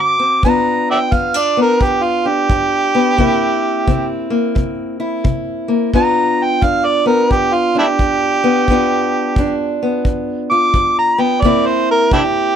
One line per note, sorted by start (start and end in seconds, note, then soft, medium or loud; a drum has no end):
0.00 0.38 D3 medium
0.00 0.18 C4 medium
0.00 0.41 F#4 medium
0.00 0.44 D6 loud
0.19 0.41 C4 medium
0.43 1.08 G2 medium
0.43 1.11 B3 medium
0.43 1.11 D4 medium
0.43 3.18 F4 medium
0.43 0.89 A#5 medium
0.43 kick medium
0.91 0.98 D5 medium
0.91 0.99 E5 medium
0.91 1.15 G5 medium
1.12 1.76 G2 medium
1.12 1.34 B3 medium
1.12 1.39 F5 medium
1.12 kick medium
1.34 2.24 D4 soft
1.34 1.59 D5 medium
1.57 2.93 B3 soft
1.62 1.85 A#4 medium
1.80 2.45 G2 medium
1.80 2.04 G4 medium
1.80 kick medium
2.03 2.29 F4 medium
2.25 3.16 D4 medium
2.25 4.30 G4 loud
2.50 3.14 G2 medium
2.50 kick medium
2.95 3.16 B3 medium
3.17 3.82 C3 medium
3.17 4.29 A#3 medium
3.17 3.87 C4 medium
3.17 4.99 E4 medium
3.17 kick medium
3.87 4.52 C3 medium
3.87 5.92 C4 medium
3.87 kick medium
4.30 5.67 A#3 medium
4.55 5.20 C3 medium
4.55 kick medium
5.00 5.94 E4 medium
5.24 5.89 C3 medium
5.24 kick medium
5.68 5.91 A#3 medium
5.93 6.58 G2 medium
5.93 7.05 B3 medium
5.93 6.62 D4 medium
5.93 8.67 F4 medium
5.93 6.45 A#5 loud
5.93 kick medium
6.44 6.65 G5 medium
6.61 7.26 G2 medium
6.61 7.74 D4 medium
6.61 6.86 F5 loud
6.61 kick medium
6.85 7.06 D5 medium
7.06 8.43 B3 medium
7.06 7.33 A#4 medium
7.30 7.95 G2 medium
7.30 7.55 G4 loud
7.30 kick medium
7.54 7.77 F4 medium
7.75 8.66 D4 medium
7.75 7.85 D4 medium
7.75 7.86 E4 medium
7.75 9.80 G4 loud
7.99 8.64 G2 medium
7.99 kick medium
8.44 8.66 B3 medium
8.68 9.33 G2 medium
8.68 9.81 B3 medium
8.68 9.38 D4 medium
8.68 10.50 F4 medium
8.68 kick medium
9.36 10.02 G2 medium
9.36 11.41 D4 medium
9.36 kick medium
9.83 11.17 B3 medium
10.05 10.70 G2 medium
10.05 kick medium
10.51 11.42 F4 medium
10.51 10.96 D6 loud
10.74 11.39 G2 medium
10.74 kick medium
10.99 11.22 A#5 loud
11.18 11.41 B3 medium
11.18 11.43 G5 medium
11.42 12.08 C3 medium
11.42 12.56 A#3 medium
11.42 12.12 C4 medium
11.42 12.56 E4 medium
11.42 11.68 D5 medium
11.42 kick medium
11.67 11.89 C5 medium
11.91 12.13 A#4 medium
12.11 12.56 C3 medium
12.11 12.56 C4 medium
12.11 12.22 D4 medium
12.11 12.20 E4 medium
12.11 12.56 G4 loud
12.11 kick medium